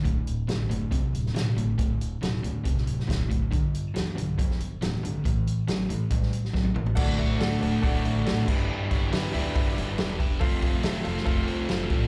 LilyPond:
<<
  \new Staff \with { instrumentName = "Upright piano" } { \time 4/4 \key g \lydian \tempo 4 = 139 r1 | r1 | r1 | r1 |
<a' d'' fis''>8 <a' d'' e''>8 <a' d'' fis''>8 <a' d'' fis''>8 <a' d'' fis''>8 <a' d'' e''>8 <a' d'' fis''>8 <g' b' e''>8~ | <g' b' e''>8 <g' b' cis''>8 <g' b' e''>8 <g' b' e''>8 <g' b' e''>8 <g' b' e''>8 <g' b' e''>8 <g' b' e''>8 | <a' c'' f''>8 <a' c'' f''>8 <a' c'' e''>8 <a' c'' f''>8 <a' c'' f''>8 <a' c'' f''>8 <a' c'' f''>8 <a' c'' f''>8 | }
  \new Staff \with { instrumentName = "Distorted electric guitar" } { \clef bass \time 4/4 \key g \lydian <d, a,>4 <d, b,>8 <d, a,>8 <d, c>4 <d, b,>8 <d, a,>8 | <d, a,>4 <d, b,>8 <d, a,>8 <d, c>4 <d, b,>8 <d, a,>8 | <g, d>4 <g, e>8 <g, d>8 <g, f>4 <g, e>8 <g, d>8 | <a, e>4 <a, fis>8 <a, e>8 <a, g>4 <a, fis>8 <a, e>8 |
d,8 fis'8 d8 a8 d8 a,8 d8 g,8 | g,8 e'8 b8 d'8 b8 g8 b8 d'8 | f,8 f'8 a8 c'8 a8 f8 a8 c'8 | }
  \new Staff \with { instrumentName = "Overdriven electric guitar" } { \clef bass \time 4/4 \key g \lydian <d, a,>4 <d, b,>8 <d, a,>8 <d, c>4 <d, b,>8 <d, a,>8 | <d, a,>4 <d, b,>8 <d, a,>8 <d, c>4 <d, b,>8 <d, a,>8 | <g, d>4 <g, e>8 <g, d>8 <g, f>4 <g, e>8 <g, d>8 | <a, e>4 <a, fis>8 <a, e>8 <a, g>4 <a, fis>8 <a, e>8 |
<d, a, d a fis'>2 <d, a, d a fis'>4. <g, d g b d' e'>8~ | <g, d g b d' e'>4. <g, d g b d' e'>2 r8 | <f, c f a c' f'>2 <f, c f a c' f'>2 | }
  \new Staff \with { instrumentName = "Upright bass" } { \clef bass \time 4/4 \key g \lydian d,,8 d,,8 a,,8 fis,,8 b,,8 d,,8 a,,8 a,,8 | d,,8 d,,8 d,,8 d,8 d,,8 d,,8 d,,8 fis,,8 | g,,8 g,,8 d,8 b,,8 e,,8 g,,8 d,,8 gis,,8 | a,,8 a,,8 a,,8 a,8 a,,8 a,,8 a,,8 a,,8 |
d,,8 d,,8 d,,8 d,,8 d,,8 a,,8 d,,8 g,,8 | g,,8 g,,8 g,,8 d,8 g,,8 g,,8 e,,4 | f,,8 f,,8 f,,8 f,,8 f,,8 c,8 f,,8 a,,8 | }
  \new DrumStaff \with { instrumentName = "Drums" } \drummode { \time 4/4 <hh bd>8 hh8 <hh sn>8 hh8 <hh bd>8 hh16 sn16 <hh sn>8 hh8 | <hh bd>8 hh8 <hh sn>8 hh8 <hh bd>16 sn16 hh16 sn16 <hh bd sn>8 <hh bd>8 | <hh bd>8 hh8 <hh sn>8 hh8 <hh bd>16 sn16 hh8 <hh sn>8 hh8 | <hh bd>8 hh8 <hh sn>8 hh8 <hh bd>16 sn16 hh16 sn16 <bd sn>16 tommh16 toml16 tomfh16 |
<cymc bd>8 <hho bd>8 <hho sn>8 hho8 <hho bd>8 hho8 <hho sn>8 <cymc bd>8 | r8 <hho bd>8 <hho sn>8 hho8 <hho bd>8 hho8 <hho sn>8 <hho bd>8 | <hho bd>8 <hho bd>8 <hho sn>8 hho16 sn16 <hho bd>8 hho8 <hho sn>8 <hho bd>8 | }
>>